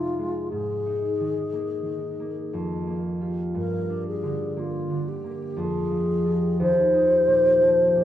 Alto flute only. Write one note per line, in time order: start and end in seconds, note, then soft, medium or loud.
0.00 0.52 F4 medium
0.53 3.00 G#4 medium
3.56 4.03 A#4 medium
4.08 4.60 G#4 medium
4.59 5.09 F4 medium
5.08 5.60 G4 medium
5.59 6.61 G#4 medium
6.62 8.04 C5 medium